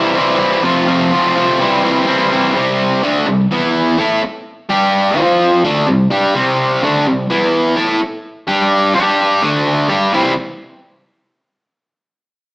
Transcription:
Already playing: distorted electric guitar C3 E3 G3 C4 E4
0.16 distorted electric guitar C3 E3 G3 C4 E4
0.40 distorted electric guitar G3 C4 E4
0.63 distorted electric guitar F2 C3 F3 A3 C4 F4
0.87 distorted electric guitar F3 A3 C4 F4
1.11 distorted electric guitar F3 A3 C4 F4
1.35 distorted electric guitar F2 C3 F3 A3 C4 F4
1.59 distorted electric guitar C3 E3 G3 C4 E4
1.83 distorted electric guitar G3 C4 E4
2.06 distorted electric guitar C3 E3 G3 C4 E4
2.32 distorted electric guitar G3 C4 E4
2.56 distorted electric guitar C3 G3 C4
3.03 distorted electric guitar D3 A3 D4
3.27 distorted electric guitar C3 G3
3.51 distorted electric guitar E3 B3 E4
3.98 distorted electric guitar A3 E4 A4
4.23 muted distorted electric guitar stroke
4.70 distorted electric guitar G3 D4 G4
5.17 distorted electric guitar F3 C4 F4
5.64 distorted electric guitar D3 A3 D4
5.88 distorted electric guitar C3 G3
6.10 distorted electric guitar G3 D4 G4
6.35 distorted electric guitar C3 G3 C4
6.82 distorted electric guitar D3 A3 D4
7.07 distorted electric guitar C3 G3
7.30 distorted electric guitar E3 B3 E4
7.77 distorted electric guitar A3 E4 A4
8.00 muted distorted electric guitar stroke
8.47 distorted electric guitar G3 D4 G4
8.95 distorted electric guitar G3 D4 G4
9.42 distorted electric guitar D3 A3 D4
9.89 distorted electric guitar G3 D4 G4
10.13 distorted electric guitar C3 E3 G3 C4 E4

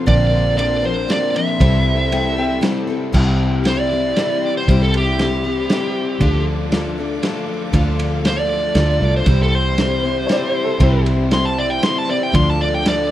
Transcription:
Already playing: string section F5 C6
0.05 fingered electric bass A#1, steel-string acoustic guitar A#2 D3 F3 C4 D4 A#4, overdriven electric guitar A#3 F4, reed electric piano D4 A#4 C5, string section A#4 D5, lead electric guitar D5, kick, ride
0.58 steel-string acoustic guitar F3 C4 D4 A#4, lead electric guitar D5, ride
0.82 steel-string acoustic guitar F3 C4 D4 A#4, lead electric guitar C5
1.08 steel-string acoustic guitar F3 C4 D4 A#4, lead electric guitar D5, snare, ride
1.34 steel-string acoustic guitar F3 C4 D4 A#4, lead electric guitar E5, ride
1.58 fingered electric bass C2, steel-string acoustic guitar C3 G3 C4, overdriven electric guitar E3, reed electric piano E4 A4 C5, string section A4 E5 G5, kick, ride
1.62 steel-string acoustic guitar E4 A4
2.11 steel-string acoustic guitar G3 C4 E4 A4, upright piano G5, ride
2.37 steel-string acoustic guitar C4 E4 A4, upright piano G5
2.61 steel-string acoustic guitar G3 C4 E4 A4, snare, ride
2.87 steel-string acoustic guitar C4 E4 A4
3.12 fingered electric bass C2, steel-string acoustic guitar C3 G3 C4 E4 G4, overdriven electric guitar E3, string section G4 C5 E5 C6, kick, crash
3.64 steel-string acoustic guitar G3 C4 E4 G4, lead electric guitar C5, snare, ride
3.80 lead electric guitar D5
3.91 steel-string acoustic guitar C4 E4 G4
4.16 overdriven electric guitar C3 E3, steel-string acoustic guitar G3 C4 E4 G4, snare, ride
4.57 lead electric guitar C5
4.68 fingered electric bass C2, steel-string acoustic guitar C3 G3 C4 E4 G4, overdriven electric guitar E3, kick, ride
4.83 lead electric guitar A4
4.94 lead electric guitar G4, ride
5.18 steel-string acoustic guitar G3 C4 E4 G4, snare, ride
5.44 steel-string acoustic guitar C4 E4 G4
5.70 overdriven electric guitar C3 E3, steel-string acoustic guitar G3 C4 E4 G4, snare, ride
6.20 fingered electric bass D2, steel-string acoustic guitar D3 F3 D4 F4 A4, overdriven electric guitar A3, string section A4 D5 F5 D6, kick, ride
6.72 steel-string acoustic guitar F3 D4 F4 A4, snare, ride
6.98 steel-string acoustic guitar D4 F4 A4
7.22 overdriven electric guitar D3 A3, steel-string acoustic guitar F3 D4 F4 A4, snare, ride
7.73 fingered electric bass D2, steel-string acoustic guitar D3 F3 D4 F4 A4, overdriven electric guitar A3, kick, ride
7.99 ride
8.25 steel-string acoustic guitar F3 D4 F4 A4, lead electric guitar C5, snare, ride
8.39 lead electric guitar D5
8.75 fingered electric bass D2, overdriven electric guitar D3 A3, steel-string acoustic guitar F3 D4 F4 A4, snare, ride
9.01 fingered electric bass C2, steel-string acoustic guitar D4 F4 A4
9.17 lead electric guitar C5
9.26 fingered electric bass C2, steel-string acoustic guitar C3 G3 C4 E4 C5, overdriven electric guitar E3, reed electric piano E4 G4 C5, string section G4 C5 E5 C6, kick, ride
9.42 lead electric guitar A4
9.55 lead electric guitar C5
9.78 steel-string acoustic guitar G3 C4 E4 C5, snare, ride
10.03 steel-string acoustic guitar C4 E4 C5
10.26 overdriven electric guitar C3 E3, steel-string acoustic guitar G3 C4, upright piano C#5, snare, ride
10.31 steel-string acoustic guitar E4 C5, upright piano D5
10.47 upright piano C5
10.64 upright piano A4
10.80 fingered electric bass C2, steel-string acoustic guitar C3 G3 C4 E4 C5, overdriven electric guitar E3, upright piano E4, kick, ride
11.06 ride
11.31 steel-string acoustic guitar G3 C4 E4 C5, lead electric guitar C6, snare, ride
11.45 lead electric guitar A5
11.58 lead electric guitar D5
11.70 lead electric guitar G5
11.83 overdriven electric guitar C3 E3, steel-string acoustic guitar G3 C4 E4 C5, lead electric guitar C6, snare, ride
11.98 lead electric guitar A5
12.08 steel-string acoustic guitar C4 E4 C5, lead electric guitar D5
12.23 lead electric guitar G5
12.34 fingered electric bass D2, steel-string acoustic guitar D3 F3 D4 F4 A4, overdriven electric guitar A3, reed electric piano F4 A4 D5, string section A4 D5 F5 D6, lead electric guitar C6, kick, ride
12.50 lead electric guitar A5
12.61 lead electric guitar D5
12.74 lead electric guitar G5
12.85 steel-string acoustic guitar F3 D4 F4 A4, lead electric guitar D5, snare, ride

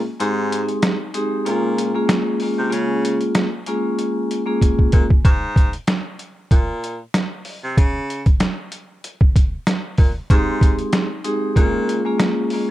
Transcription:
0.20 baritone saxophone G#2, vibraphone G#3 C4 D#4 G4 G#4, closed hi-hat
0.52 closed hi-hat
0.68 closed hi-hat
0.82 snare, closed hi-hat
1.14 vibraphone G#3 C4 D#4 G4 G#4, closed hi-hat
1.45 baritone saxophone A#2, vibraphone G#3 A#3 C#4 F4 G#4, closed hi-hat
1.78 closed hi-hat
1.95 vibraphone G#3 A#3 C#4 F4 G#4
2.08 vibraphone G#3 A#3 C#4 F4 G#4, snare, closed hi-hat
2.40 vibraphone G#3 A#3 C#4 F4 G#4, open hi-hat
2.59 baritone saxophone C3
2.69 baritone saxophone C#3, vibraphone G#3 A#3 C#4 F4 G#4, closed hi-hat
3.05 closed hi-hat
3.21 closed hi-hat
3.35 snare, closed hi-hat
3.66 vibraphone G#3 A#3 C#4 F4 G#4, closed hi-hat
3.99 closed hi-hat
4.31 closed hi-hat
4.46 vibraphone G#3 A#3 C#4 F4 G#4
4.62 kick, closed hi-hat
4.79 kick
4.92 baritone saxophone A#2, kick, closed hi-hat
5.10 kick
5.25 baritone saxophone G#2, kick, closed hi-hat
5.56 kick, closed hi-hat
5.73 closed hi-hat
5.87 snare, closed hi-hat
6.19 closed hi-hat
6.51 baritone saxophone A#2, kick, closed hi-hat
6.84 closed hi-hat
7.14 snare, closed hi-hat
7.45 open hi-hat
7.64 baritone saxophone C3
7.77 baritone saxophone C#3, kick, closed hi-hat
8.10 closed hi-hat
8.26 kick, closed hi-hat
8.40 snare, closed hi-hat
8.72 closed hi-hat
9.04 closed hi-hat
9.21 kick
9.36 kick, closed hi-hat
9.67 snare, closed hi-hat
9.98 baritone saxophone A#2, kick, open hi-hat
10.30 baritone saxophone G#2, vibraphone G#3 C4 D#4 G4 G#4, kick, closed hi-hat
10.61 kick, closed hi-hat
10.79 closed hi-hat
10.93 snare, closed hi-hat
11.24 vibraphone G#3 C4 D#4 G4 G#4, closed hi-hat
11.56 baritone saxophone A#2, vibraphone G#3 A#3 C#4 F4 G#4, kick, closed hi-hat
11.89 closed hi-hat
12.05 vibraphone G#3 A#3 C#4 F4 G#4
12.18 vibraphone G#3 A#3 C#4 F4 G#4, snare, closed hi-hat
12.50 vibraphone G#3 A#3 C#4 F4 G#4, open hi-hat

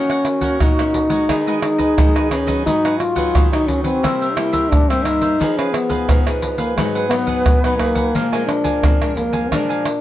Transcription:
Already playing: nylon-string guitar D#3 A#3 C#4 F#4, trombone C#4, flute F#4
0.10 cavaquinho A#4 C#5 F#5, pandeiro, tamborim, shaker
0.25 muted cavaquinho stroke, pandeiro, tamborim, shaker
0.41 nylon-string guitar A#3 C#4 F#4, cavaquinho A#4 C#5 F#5, pandeiro, shaker, surdo
0.60 nylon-string guitar A#2, cavaquinho D#4 A#4 C#5 F#5, trombone D#4, pandeiro, tamborim, shaker, surdo
0.79 nylon-string guitar A#3 C#4 F#4, pandeiro, tamborim, shaker
0.94 pandeiro, surdo
1.09 nylon-string guitar G#3 B3 F#4, cavaquinho A#4 C#5 F#5, pandeiro, shaker
1.29 nylon-string guitar D#3, cavaquinho D#4 G#4 B4 D#5, flute G#4, pandeiro, tamborim, shaker, surdo
1.47 nylon-string guitar G#3 B3 F#4, cavaquinho G#4 B4 D#5, pandeiro, shaker
1.62 trombone D#4, muted cavaquinho stroke, pandeiro, tamborim, shaker
1.78 cavaquinho G#4 B4 D#5, pandeiro, shaker, surdo
1.97 nylon-string guitar D#3 G#3 B3 F#4, pandeiro, tamborim, shaker, surdo
2.15 cavaquinho G#4 B4 D#5, pandeiro, tamborim, shaker
2.31 trombone C#4, cavaquinho D#4 G#4 B4 D#5, pandeiro, tamborim, shaker, surdo
2.46 nylon-string guitar F#3 B3 D#4, cavaquinho G#4 B4 D#5, pandeiro, shaker, surdo
2.66 nylon-string guitar G#2, trombone D#4, cavaquinho D#4 G#4 B4 F#5, flute F#4, pandeiro, shaker, surdo
2.85 cavaquinho G#4 B4 F#5, pandeiro, tamborim, shaker
2.99 trombone F4, muted cavaquinho stroke, pandeiro, tamborim
3.15 nylon-string guitar F#3 B3 D#4, cavaquinho G#4 B4 F#5, pandeiro, shaker, surdo
3.35 nylon-string guitar D#3, cavaquinho D#4 G#4 B4 F#5, pandeiro, tamborim, shaker, surdo
3.52 nylon-string guitar F#3 B3 D#4, trombone D#4, pandeiro, tamborim, shaker
3.67 trombone C#4, pandeiro, shaker, surdo
3.83 trombone C4, cavaquinho G#4 B4 F#5, pandeiro, shaker
4.03 nylon-string guitar C3 G3 A#3 E4, cavaquinho E4 A#4 C5 E5, flute G4, pandeiro, tamborim, shaker, surdo
4.21 cavaquinho A#4 C5 E5, pandeiro, shaker
4.35 nylon-string guitar G3 A#3 E4, trombone E4, muted cavaquinho stroke, pandeiro, tamborim
4.53 cavaquinho A#4 C5 E5, pandeiro, shaker, surdo
4.71 nylon-string guitar G2, trombone D4, pandeiro, tamborim, shaker, surdo
4.89 nylon-string guitar G3 A#3 E4, trombone C4, cavaquinho A#4 C5 E5, pandeiro, tamborim, shaker
5.05 trombone D#4, cavaquinho E4 A#4 C5 E5, pandeiro, tamborim
5.21 cavaquinho A#4 C5 E5, pandeiro, shaker, surdo
5.40 nylon-string guitar F3 B3 D#4 G#4, cavaquinho D#4 G#4 B4 F5, flute G#4, pandeiro, shaker, surdo
5.57 trombone C#4, cavaquinho G#4 B4 F5, pandeiro, tamborim, shaker
5.72 trombone B3, muted cavaquinho stroke, pandeiro, tamborim
5.89 nylon-string guitar B3 D#4 G#4, cavaquinho G#4 B4 F5, pandeiro, shaker, surdo
6.09 nylon-string guitar F3, cavaquinho D#4 G#4 B4 F5, flute B4, pandeiro, tamborim, shaker, surdo
6.27 nylon-string guitar B3 D#4 G#4, pandeiro, tamborim, shaker
6.42 pandeiro, shaker, surdo
6.57 trombone A#3, cavaquinho G#4 B4 F5, pandeiro, shaker
6.76 nylon-string guitar G#2 F#3 B3 D#4, trombone G#3, cavaquinho D#4 G#4 B4 F#5, flute B4, pandeiro, tamborim, shaker, surdo
6.95 cavaquinho G#4 B4 F#5, pandeiro, shaker
7.09 nylon-string guitar F#3 B3 D#4, trombone B3, muted cavaquinho stroke, pandeiro, tamborim
7.27 cavaquinho G#4 B4 F#5, pandeiro, shaker, surdo
7.46 nylon-string guitar D#3, pandeiro, tamborim, shaker, surdo
7.64 nylon-string guitar F#3 B3 D#4, cavaquinho G#4 B4 F#5, pandeiro, tamborim, shaker
7.78 trombone A#3, cavaquinho D#4 G#4 B4 F#5, pandeiro, tamborim, shaker, surdo
7.95 cavaquinho G#4 B4 F#5, pandeiro, shaker, surdo
8.15 nylon-string guitar A#2 F3 G#3 D4, cavaquinho D4 A#4 F5 G#5, flute A#4, pandeiro, shaker, surdo
8.32 nylon-string guitar F3 G#3 D4, cavaquinho A#4 F5 G#5, pandeiro, tamborim, shaker
8.46 trombone D4, muted cavaquinho stroke, pandeiro, tamborim, shaker
8.64 cavaquinho A#4 F5 G#5, pandeiro, shaker, surdo
8.83 nylon-string guitar F2, cavaquinho D4 A#4 F5 G#5, pandeiro, tamborim, shaker, surdo
9.02 nylon-string guitar F3 G#3 D4, pandeiro, tamborim, shaker
9.16 trombone A#3, pandeiro, shaker, surdo
9.33 cavaquinho A#4 F5 G#5, pandeiro, shaker
9.52 nylon-string guitar A#2 F3 G#3 D4, cavaquinho D4 A#4 F5 G#5, trombone D4, pandeiro, tamborim, shaker, surdo
9.69 cavaquinho A#4 F5 G#5, pandeiro, shaker
9.86 muted cavaquinho stroke, pandeiro, tamborim, shaker

